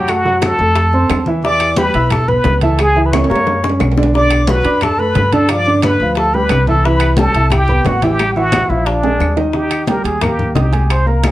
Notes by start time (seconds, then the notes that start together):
Already playing: F#2 G4 G5
0.08 A3 F#4 A4 F#5 A5, high bongo, high conga, high timbale, claves
0.25 F#3 F#4 F#5, high bongo, high conga
0.42 A4 A5, high bongo, high conga, high timbale, low timbale, claves
0.58 F2 A3 A4 A5, high bongo
0.76 high bongo, high conga, high timbale
0.93 C4 C5 C6, high bongo, high conga
1.10 E2, high bongo, low bongo, high conga, high timbale, low timbale, claves
1.26 E3 E4 E5, high conga
1.43 E3 E4 D5 E5 D6, high bongo, high conga
1.60 high bongo, high conga, high timbale, claves
1.76 G3 G4 B4 G5 B5, high bongo, high conga, high timbale, low timbale
1.94 B1 E4 E5 E6, high bongo, high conga, high timbale
2.10 A4 A5, high bongo, high conga, low conga, high timbale, claves
2.28 B3 B4 B5, high bongo, high conga, low conga
2.44 C#2, high bongo, low bongo, high conga, high timbale, low timbale
2.61 E3 E4 A4 E5 A5, high conga, high timbale
2.78 G#3 G#4 G#5, high bongo, high conga, high timbale, claves
2.96 E3 E4 E5, high bongo, high conga
3.06 B4 B5
3.12 C#5 C#6, high bongo, high conga, high timbale, claves
3.24 high timbale
3.29 F#2 A#3 A#4 A#5, high bongo
3.35 low timbale
3.46 low bongo, high conga, low timbale
3.63 C#4 C#5 C#6, low bongo, high conga
3.69 low timbale
3.80 B1, low bongo, high conga, low timbale, claves
3.92 low timbale
3.97 D3 D4 D5, low bongo
4.03 low timbale
4.14 D3 D4 D5 D6, high bongo, high conga
4.31 high bongo, high conga, high timbale, claves
4.47 F#3 F#4 B4 F#5 B5, high bongo, high conga, high timbale, low timbale
4.64 F#2 D4 D5 D6, high bongo, high conga, high timbale
4.81 A4 A5, high bongo, high conga, low conga, high timbale, claves
4.99 A3 A4 B4 A5 B5, high bongo, high conga
5.15 G2, high bongo, low bongo, high conga, high timbale, low timbale
5.33 D3 D4 A4 D5 A5, high conga, high timbale
5.49 F3 F4 D5 F5 D6, high bongo, high conga, high timbale, claves
5.66 D3 D4 D5, high bongo, high conga
5.82 B4 B5, high bongo, high conga, high timbale, low timbale, claves
6.00 D2 F3 F4 F5, high bongo
6.15 A4 A5, high bongo, high conga, high timbale
6.34 G3 G4 B4 G5 B5, high bongo, high conga
6.49 C2, high bongo, low bongo, high conga, high timbale, low timbale, claves
6.67 E3 E4 A4 E5 A5, high conga
6.84 E3 E4 B4 E5 B5, high bongo, high conga
7.00 high bongo, high conga, high timbale, claves
7.17 G3 G4 A4 G5 A5, high bongo, high conga, high timbale, low timbale
7.34 C2 E4 E5 E6, high bongo, high conga, high timbale
7.50 G4 G5, high bongo, high conga, low conga, high timbale, claves
7.68 B3 B4 B5, high bongo, high conga, low conga
7.85 A1 F#4 F#5, high bongo, low bongo, high conga, high timbale, low timbale
8.02 E3 E4 G4 E5 G5, high conga, high timbale
8.19 G3 G4 G5, high bongo, high conga, high timbale, claves
8.36 E3 E4 F#4 E5 F#5, high bongo, high conga
8.52 high bongo, high conga, high timbale, low timbale, claves
8.69 A#1 F3 E4 F4 E5 F5, high bongo
8.86 D4 D5, high bongo, high conga, high timbale
9.03 G#3 G#4 G#5, high bongo, high conga, high timbale
9.20 D#2, high bongo, low bongo, high conga, low timbale, claves
9.36 D#3 D#4 D#5, low timbale
9.53 D#3 D#4 G4 D#5, high bongo, high conga
9.71 high bongo, high conga, high timbale, claves
9.87 G3 G4 A#4 G5, high bongo, high conga, high timbale, low timbale
10.04 D#2 G#4, high bongo, high conga, high timbale
10.21 A#3 G4 A#4 A#5, high bongo, high conga, low conga, high timbale, claves
10.39 high bongo, high conga, low conga
10.55 C2 D#4 G4 D#5 D#6, high bongo, low bongo, high conga, high timbale, low timbale
10.72 G#3 G#4 G#5, high conga, high timbale
10.90 C5, high bongo, high conga, high timbale, claves
11.06 A#3 A#4 A#5, high bongo, high conga
11.24 G#4, high bongo, high conga, high timbale, low timbale, claves